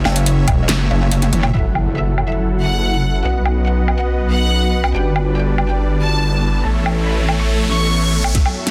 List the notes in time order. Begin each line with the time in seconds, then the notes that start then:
Already playing: F#3 C#4 C#5 E5
0.05 F#1, snare, low woodblock
0.16 closed hi-hat
0.26 closed hi-hat
0.48 E1, kick, closed hi-hat, low woodblock
0.69 F#1, snare, clap, closed hi-hat
0.90 F#1
1.11 closed hi-hat
1.22 closed hi-hat, high tom
1.33 F#1, closed hi-hat, mid tom
1.43 mid tom, low woodblock
1.54 F#1 F#3 C#4 E4 A4 E5 F#5, impact
1.66 F#4
1.75 low woodblock
1.97 E5
2.18 low woodblock
2.23 E5
2.29 B4 E5
2.60 F#5
3.24 B1 B3 B4 D#5 F#5
3.46 low woodblock
3.67 F#5
3.88 low woodblock
3.99 F#5
4.31 F#5
4.84 low woodblock
4.94 G1 G3 B3 D4 D5 G5, riser
5.03 E4
5.13 A4, low woodblock
5.37 G5
5.58 low woodblock
5.69 G5
6.01 A5
6.65 A1 A3 A4 C#5 E5 A5
6.86 low woodblock
7.06 C#5 B5
7.29 low woodblock
7.39 C#6
7.71 C#6
8.24 low woodblock
8.35 F#2 F#3 A4 E5, kick, snare, closed hi-hat, riser
8.46 low woodblock
8.67 snare, closed hi-hat